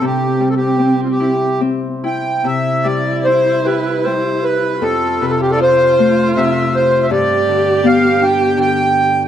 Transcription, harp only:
X:1
M:3/4
L:1/8
Q:1/4=77
K:C
V:1 name="Harp" clef=bass
C, G, C E C E | C, G, E G G,2 | F,, C, F, A, C,2 | G,, D, B, D D,2 |]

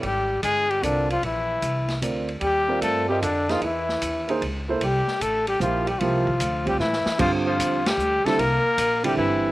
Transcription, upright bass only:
X:1
M:3/4
L:1/8
Q:"Swing" 1/4=151
K:F
V:1 name="Upright bass" clef=bass
_A,,,2 G,,,2 C,,2 | B,,,2 C,,2 D,,2 | _E,,2 G,,2 F,,2 | E,,2 ^D,,2 _D,,2 |
C,, z A,,,2 B,,,2 | C,,2 D,,2 A,, z | G,,2 E,,2 D,, z | C,, z B,,,2 G,,,2 |]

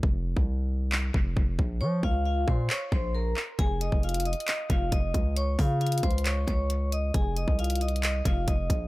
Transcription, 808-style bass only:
X:1
M:4/4
L:1/16
Q:1/4=135
K:Fm
V:1 name="808-style bass" clef=bass
F,,,3 C,,6- C,, F,,,2 F,,,2 B,,,2 | F,2 D,,4 B,,2 z2 B,,,4 z2 | F,,,3 F,,,4 z3 F,,,2 F,,,2 D,,2- | D,,2 D,4 D,,4 D,,6 |
F,,,3 C,,6- C,, F,,,2 F,,,2 B,,,2 |]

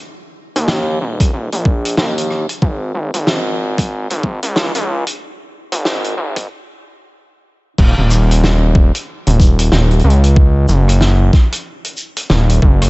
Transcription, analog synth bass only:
X:1
M:4/4
L:1/16
Q:"Swing 16ths" 1/4=93
K:Ebm
V:1 name="Analog synth bass" clef=bass
z3 E,,3 E,,,2 E,,, B,,,3 E,,3 z | A,,,2 A,,, A,,,6 A,,,2 D,,2 D,,2 z | z3 A,,,3 A,,,2 z8 | E,,, E,,,6 z2 E,,,3 E,,,2 D,,2- |
D,,2 G,,,4 z6 E,,,2 G,,,2 |]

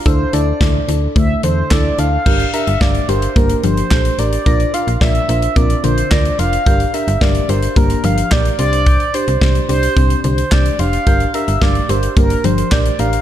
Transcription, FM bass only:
X:1
M:4/4
L:1/16
Q:1/4=109
K:Gdor
V:1 name="FM bass" clef=bass
D,,2 D,,2 D,,2 D,,2 D,,2 E,,2 D,,2 D,,2 | G,,,2 z G,,, G,,,2 G,,,2 G,,,2 G,,,2 B,,,2 A,,,2 | B,,,2 z B,,, B,,,2 B,,,2 B,,,2 B,,,2 D,,2 F,,,2 | G,,,2 z G,,, G,,,2 G,,,2 G,,,2 G,,,2 B,,,2 C,,2- |
C,,2 z C,, C,,2 C,,2 C,,2 C,,2 C,,2 F,,,2 | G,,,2 z G,,, G,,,2 G,,,2 G,,,2 G,,,2 B,,,2 A,,,2 |]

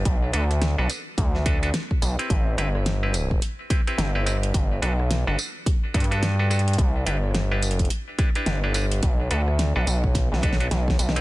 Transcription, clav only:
X:1
M:4/4
L:1/16
Q:"Swing 16ths" 1/4=107
K:Bphr
V:1 name="Clav"
z2 [DFAB] z2 [DFAB] z4 [DFAB] [DFAB] z3 [CEGB]- | [CEGB]2 [CEGB] z2 [CEGB] z4 [CEGB] [CEGB]2 [CEGB] [CEGB] z | z2 [DFAB] z2 [DFAB] z4 [DFAB] [DFAB]2 [DFAB] [DFAB] z | z2 [DEGB] z2 [DEGB] z4 [DEGB] [DEGB]2 [DEGB] [DEGB] z |
z2 [DFAB] z2 [DFAB] z4 [DFAB] [DFAB] z3 [CEGB] |]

